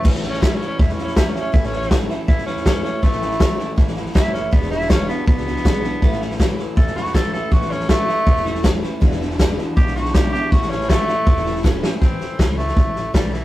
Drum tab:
CC |x---------------|----------------|----------------|----------------|
HH |----p-------p---|----p-------p---|----p-------p---|----p-------p---|
SD |ooooo-o-ooooo-o-|ooooo-o-ooooo-o-|ooooo-o-ooooo-o-|ooooo-o-ooooo-o-|
BD |o---o---o---o---|o---o---o---o---|o---o---o---o---|o---o---o---o---|

CC |----------------|----------------|----------------|----------------|
HH |----p-------p---|----p-------p---|----p-------p---|----p-------p---|
SD |ooooo-o-ooooo-o-|ooooo-o-ooooo-o-|ooooo-o-ooooo-o-|ooooo-o-ooooo-o-|
BD |o---o---o---o---|o---o---o---o---|o---o---o---o---|o---o---o---o---|

CC |----------------|
HH |----p-------p---|
SD |o-o-o-ooo-o-o-o-|
BD |o---o---o---o---|